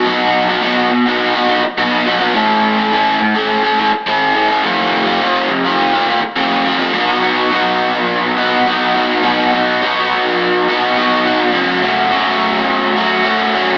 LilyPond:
\new Staff \with { instrumentName = "Overdriven electric guitar" } { \time 4/4 \key fis \dorian \tempo 4 = 104 <b, fis b dis' fis'>8. <b dis' fis'>16 <b, fis b dis' fis'>8. <b dis' fis'>8 <b dis' fis'>16 <fis b dis' fis'>8 <b, fis b dis' fis'>8 <fis b dis' fis'>16 <b dis' fis'>16 | <a, e a cis' a'>8. <a cis' a'>16 <a, e a cis' a'>8. <a cis' a'>8 <a cis' a'>16 <e a cis' a'>8 <a, e a cis' a'>8 <e a cis' a'>16 <a cis' a'>16 | <fis, cis e ais cis' fis'>8. <e ais cis' fis'>16 <fis, cis e ais cis' fis'>8. <e ais cis' fis'>8 <e ais cis' fis'>16 <e ais cis' fis'>8 <fis, cis e ais cis' fis'>8 <e ais cis' fis'>16 <e ais cis' fis'>16 | \key b \major <b, fis b dis' fis'>8 <b dis' fis'>8 <fis b dis' fis'>4. <b dis' fis'>8 <fis b dis' fis'>8 <b dis' fis'>8 |
<b, fis b dis' fis'>8 <b dis' fis'>8 <fis b dis' fis'>4. <b dis' fis'>8 <fis b dis' fis'>8 <b dis' fis'>8 | <fis, cis fis a cis' fis'>8 <fis a cis' fis'>8 <fis a cis' fis'>4. <fis a cis' fis'>8 <fis a cis' fis'>8 <fis a cis' fis'>8 | }